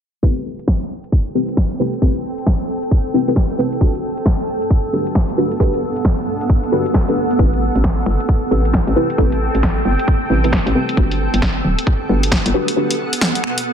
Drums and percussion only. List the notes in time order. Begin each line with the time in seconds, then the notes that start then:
0.23 kick
0.37 closed hi-hat
0.59 closed hi-hat
0.68 kick, snare
1.04 closed hi-hat
1.12 kick
1.49 closed hi-hat
1.57 kick, snare
1.71 closed hi-hat
1.93 closed hi-hat
2.02 kick
2.16 closed hi-hat
2.38 closed hi-hat
2.47 kick, snare
2.83 closed hi-hat
2.91 kick
3.28 closed hi-hat
3.36 kick, snare
3.50 closed hi-hat
3.73 closed hi-hat
3.81 kick
3.95 closed hi-hat
4.17 closed hi-hat
4.26 kick, snare
4.62 closed hi-hat
4.71 kick
5.07 closed hi-hat
5.15 kick, snare
5.29 closed hi-hat
5.52 closed hi-hat
5.60 kick
5.74 closed hi-hat
5.96 closed hi-hat
6.05 kick, snare
6.41 closed hi-hat
6.50 kick
6.64 closed hi-hat
6.86 closed hi-hat
6.94 kick, snare
7.08 closed hi-hat
7.31 closed hi-hat
7.39 kick
7.53 closed hi-hat
7.76 closed hi-hat
7.84 finger snap, kick, snare
8.06 finger snap
8.20 closed hi-hat
8.29 kick
8.65 closed hi-hat
8.74 kick, snare
8.88 closed hi-hat
9.10 closed hi-hat
9.18 kick
9.32 closed hi-hat
9.55 closed hi-hat
9.63 finger snap, kick, snare
9.99 closed hi-hat
10.08 kick
10.44 closed hi-hat
10.53 kick, snare
10.67 closed hi-hat
10.89 closed hi-hat
10.97 kick
11.11 closed hi-hat
11.34 closed hi-hat
11.42 finger snap, kick, snare
11.79 closed hi-hat
11.87 kick
12.23 closed hi-hat
12.32 kick, snare
12.46 closed hi-hat
12.68 closed hi-hat
12.91 closed hi-hat
13.13 closed hi-hat
13.21 finger snap, snare
13.35 closed hi-hat
13.44 finger snap
13.58 closed hi-hat